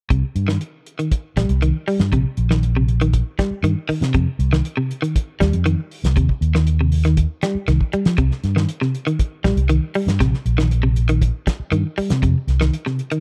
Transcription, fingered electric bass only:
0.11 C2
0.35 G2
1.36 A#1
1.49 C2
2.00 G2
2.12 A#1
2.38 A#1
3.51 muted fingered electric bass stroke
3.63 G2
3.89 muted fingered electric bass stroke
4.01 C3
4.15 F2
4.39 C2
5.41 D#2
5.53 F2
6.04 C2
6.17 D#2
6.41 D#2
7.55 muted fingered electric bass stroke
7.68 C2
7.93 muted fingered electric bass stroke
8.06 F3
8.18 C2
8.44 G2
9.45 A#1
9.56 C2
10.07 G2
10.20 A#1
10.46 A#1
11.60 muted fingered electric bass stroke
11.72 G2
11.98 muted fingered electric bass stroke
12.11 C3
12.23 F2
12.47 C2

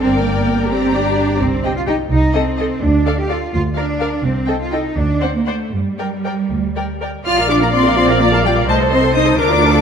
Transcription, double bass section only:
0.02 G1
1.42 C2
2.11 C2
2.81 D2
3.52 D2
4.24 C2
4.97 D2
5.73 G2
6.50 D2
7.26 A#1
8.69 C2
9.38 D2

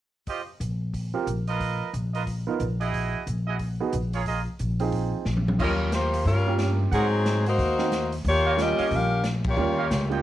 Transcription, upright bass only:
0.60 A#1
1.27 A#1
1.93 A#1
2.60 A#1
3.26 A#1
3.93 A#1
4.60 A#1
5.25 A#1
5.59 D#2
6.25 G2
6.92 G#2
7.58 D#2
8.25 D#2
8.79 muted upright bass stroke
8.91 A#1
9.57 D#2
9.91 C#2

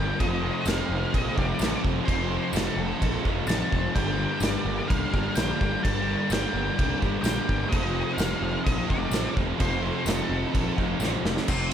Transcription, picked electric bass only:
Already playing: G1
0.20 F1
0.66 F1
0.89 F1
1.14 A#1
1.38 F1
1.60 A1
1.85 F1
2.08 F1
2.53 F1
2.76 F1
3.02 A#1
3.25 F1
3.46 A1
3.72 F1
3.96 G1
4.40 G1
4.65 G1
4.90 C2
5.14 G1
5.37 A#1
5.61 G1
5.85 G1
6.30 G1
6.54 G1
6.79 C2
7.02 G1
7.23 A#1
7.49 G1
7.73 F1
8.18 F1
8.41 F1
8.66 A#1
8.90 F1
9.11 A1
9.37 F1
9.60 F1
10.06 F1
10.29 F1
10.55 A#1
10.78 F1
10.99 A1
11.23 F1
11.49 F1

